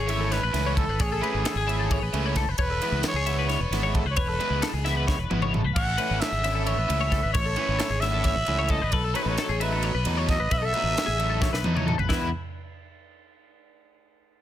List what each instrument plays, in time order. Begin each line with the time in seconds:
Already playing: fingered electric bass G#1, clean electric guitar E3, trumpet C#5
0.07 overdriven electric guitar E3 A3 C#4 E4, clean electric guitar E5, ride
0.21 clean electric guitar A4
0.31 trumpet B4, clean electric guitar C#5, snare, ride
0.43 fingered electric bass A1, clean electric guitar B4
0.54 fingered electric bass C#2, overdriven electric guitar E3 A3 C#4 E4, snare, ride
0.66 clean electric guitar C#5
0.77 trumpet A4, clean electric guitar A4, kick, ride
0.88 fingered electric bass G#1, clean electric guitar B4
1.00 fingered electric bass A1, trumpet G#4, clean electric guitar C#5, kick, ride
1.12 clean electric guitar A4
1.22 overdriven electric guitar E3 A3 C#4 E4, clean electric guitar B4, ride
1.34 fingered electric bass G#1
1.45 clean electric guitar A4, snare, ride
1.55 fingered electric bass G#1, clean electric guitar G#4
1.67 overdriven electric guitar E3 A3 C#4 E4, clean electric guitar E5, ride
1.79 clean electric guitar A4
1.91 clean electric guitar C#5, kick, ride
2.02 fingered electric bass A1, clean electric guitar B4
2.13 fingered electric bass C#2, overdriven electric guitar E3 A3 C#4 E4, ride
2.26 clean electric guitar C#5
2.36 clean electric guitar A4, kick, snare, ride
2.47 fingered electric bass F#1, clean electric guitar B4
2.58 fingered electric bass E1, trumpet B4, clean electric guitar C#5, kick, ride
2.70 clean electric guitar A4
2.82 overdriven electric guitar E3 G#3 B3 E4, clean electric guitar B4, ride
2.92 fingered electric bass C#2
3.03 clean electric guitar A4, snare, ride
3.08 trumpet C#5
3.14 fingered electric bass C#2, clean electric guitar G#4
3.26 overdriven electric guitar E3 G#3 B3 E4, clean electric guitar E5, ride
3.39 clean electric guitar B4
3.49 clean electric guitar C#5, trumpet C#5, snare, ride
3.60 fingered electric bass E1, clean electric guitar B4
3.70 fingered electric bass G#1, overdriven electric guitar E3 G#3 B3 E4, snare, ride
3.83 clean electric guitar C#5
3.94 clean electric guitar A4, kick, ride
4.05 fingered electric bass C#2, clean electric guitar B4
4.11 trumpet C#5
4.17 fingered electric bass E1, trumpet B4, clean electric guitar C#5, kick, ride
4.28 clean electric guitar A4
4.40 overdriven electric guitar E3 G#3 B3 E4, clean electric guitar B4, ride
4.50 fingered electric bass C#2
4.62 clean electric guitar A4, snare, ride
4.73 fingered electric bass C#2, clean electric guitar G#4
4.85 overdriven electric guitar E3 G#3 B3 E4, clean electric guitar E5, snare, ride
4.97 clean electric guitar B4
5.08 clean electric guitar C#5, kick, snare
5.19 fingered electric bass E1, clean electric guitar B4
5.31 fingered electric bass G#1, overdriven electric guitar E3 G#3 B3 E4, high tom
5.42 clean electric guitar C#5, mid tom
5.53 clean electric guitar A4, mid tom
5.64 fingered electric bass C#2, clean electric guitar B4
5.75 fingered electric bass A1, clean electric guitar C#5, trumpet F#5, kick, crash, ride
5.87 clean electric guitar A4
5.98 overdriven electric guitar E3 A3 C#4 E4, clean electric guitar B4, ride
6.11 fingered electric bass G#1
6.20 clean electric guitar A4, trumpet E5, snare, ride
6.32 fingered electric bass G#1, clean electric guitar G#4
6.44 overdriven electric guitar E3 A3 C#4 E4, clean electric guitar E5, snare, ride
6.55 clean electric guitar A4
6.65 clean electric guitar C#5, trumpet E5, ride
6.77 fingered electric bass A1, clean electric guitar B4
6.89 fingered electric bass C#2, overdriven electric guitar E3 A3 C#4 E4, ride
7.01 clean electric guitar C#5
7.12 clean electric guitar A4, kick, snare, ride
7.23 fingered electric bass G#1, clean electric guitar B4
7.33 fingered electric bass A1, trumpet C#5, clean electric guitar C#5, kick, ride
7.45 clean electric guitar A4
7.56 overdriven electric guitar E3 A3 C#4 E4, clean electric guitar B4, ride
7.68 fingered electric bass G#1
7.79 clean electric guitar A4, snare, ride
7.90 fingered electric bass G#1, clean electric guitar G#4
8.00 overdriven electric guitar E4, trumpet E5, clean electric guitar E5, snare, ride
8.04 overdriven electric guitar E3 A3 C#4
8.13 clean electric guitar A4
8.23 clean electric guitar C#5, kick, snare, ride
8.35 fingered electric bass A1, clean electric guitar B4
8.46 fingered electric bass C#2, overdriven electric guitar E3 A3 C#4 E4, ride
8.59 clean electric guitar C#5
8.69 clean electric guitar A4, trumpet D#5, kick, ride
8.82 fingered electric bass G#1, clean electric guitar B4
8.92 fingered electric bass B1, trumpet A4, clean electric guitar B4, kick, ride
9.04 clean electric guitar A4
9.15 overdriven electric guitar B2 F#3 A3 D#4, clean electric guitar B4, trumpet C#5, ride
9.23 fingered electric bass A1, trumpet B4
9.28 trumpet C#5
9.38 clean electric guitar A4, snare, ride
9.49 fingered electric bass A1, clean electric guitar G#4
9.60 overdriven electric guitar B2 F#3 A3 D#4, trumpet B4, clean electric guitar E5, ride
9.72 clean electric guitar A4
9.83 clean electric guitar C#5, ride
9.94 fingered electric bass B1, clean electric guitar B4
10.05 fingered electric bass E2, overdriven electric guitar B2 F#3 A3 D#4, ride
10.17 clean electric guitar C#5
10.28 clean electric guitar A4, trumpet D#5, kick, snare, ride
10.40 fingered electric bass A1, clean electric guitar B4
10.51 fingered electric bass B1, clean electric guitar B4, trumpet E5, kick, ride
10.58 clean electric guitar A4, trumpet D#5
10.65 trumpet E5
10.73 overdriven electric guitar B2 F#3 A3 D#4, clean electric guitar B4, ride
10.84 fingered electric bass A1
10.95 clean electric guitar A4, snare, ride
11.06 fingered electric bass A1, clean electric guitar G#4
11.18 overdriven electric guitar B2 F#3 A3 D#4, clean electric guitar E5, ride
11.30 clean electric guitar A4
11.41 clean electric guitar C#5, kick, snare
11.53 fingered electric bass B1, clean electric guitar B4, snare
11.64 fingered electric bass E2, overdriven electric guitar B2 F#3 A3 D#4, high tom
11.76 clean electric guitar C#5, mid tom
11.87 clean electric guitar A4, mid tom
11.98 fingered electric bass A1, clean electric guitar B4, floor tom
12.09 fingered electric bass E2, overdriven electric guitar E3 G#3 B3 E4, clean electric guitar E4, trumpet B4, kick, snare, crash